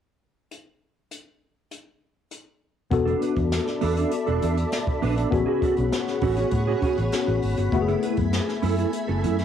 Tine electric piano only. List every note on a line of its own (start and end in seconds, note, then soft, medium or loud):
2.91 5.28 B3 medium
2.91 5.28 D4 medium
2.91 5.29 F#4 medium
2.91 5.29 A4 medium
5.31 7.08 B3 medium
5.31 7.09 C#4 medium
5.31 7.09 F#4 medium
5.31 7.10 G#4 medium
7.13 7.72 B3 medium
7.13 7.73 C#4 soft
7.13 7.73 F#4 soft
7.13 7.74 G#4 medium
7.72 9.45 A3 medium
7.72 9.45 B3 medium
7.72 9.45 E4 medium
7.72 7.80 F#4 medium
7.81 9.45 G#4 medium